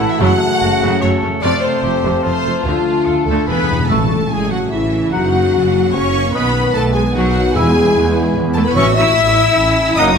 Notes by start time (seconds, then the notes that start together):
Already playing: A2 E3 A3 E4 F#4 C#5 F#5 A5
0.00 A1 A4
0.10 E5
0.19 F#1 F#2 C#3 F#3 C#4 F#4 F#5
0.40 C#3
0.60 F#1 F#2 A3 C#4 F#4 A4
0.81 F#1 F#2 C#3 F#3 C#5
1.01 F#1 F#2 F#3 A3 A4 C#5 A5
1.22 F#1 F#2 A3 C#4 A4
1.42 F1 F2 C3 A3 C4 F4 D5 A5
1.61 C3 C5
1.83 F1 F2 A3 F4 G4 A4
2.04 F1 F2 C3 A3 F5
2.23 F1 F2 C3 F3 A3 C4 F4 C5 A5
2.44 F1 F2 A3 F4 C5
2.63 D2 D3 D4 F4
2.67 D3 A3
2.86 A3
3.05 D2 A3 F4 A4
3.26 D2 A4 F5
3.30 D3 A3
3.47 E1 E2 D3 E3 B3 D4 E4 G#4 B4 B5
3.55 E2
3.63 E2
3.69 E1 E2 D4 E4 E5
3.79 E2
3.88 A1 A2 C#3 A3 A4 E5 A5 C#6
4.11 C#4
4.29 A1 G#3 C#4 E4 G#4 G#5
4.50 F#3 F#4 C#5 F#5
4.69 A1 E3 C#4 E4 E5
4.92 C#4
5.12 F#1 F#2 F#3 A#3 D#4 F#4 F#5 A#5
5.33 A#3
5.53 F#1 C#4 F#4
5.75 C#5
5.93 F#1 C#4 F#4 C#5 C#6
6.15 A#3
6.33 B1 B2 D#3 B3 B4 D#5 B5
6.55 B3
6.74 B1 A3 B3 F#4 A4 A5
6.94 G#3 G#4 D#5 G#5
7.14 B1 F#3 D#4 F#4 F#5
7.36 B3
7.53 E2 E3 G#3 E4 G#4 E5 G#5
7.57 B5
7.75 B3
7.96 E2 E4
8.16 E5
8.36 E2 E4
8.54 A3 B3 A4 A5
8.65 B3 B4 B5
8.72 A1 A2 C#5 C#6
8.77 E3 C#4 F#4 C#5 E5 C#6
8.93 A3 E5 E6
8.97 E4 E5
9.17 A1 E4
9.37 C#5
9.56 A1 C#4 E4
9.77 A3
9.95 F#1 F#2 F#3 A#3 D#4 D#5 F#5 A#5 D#6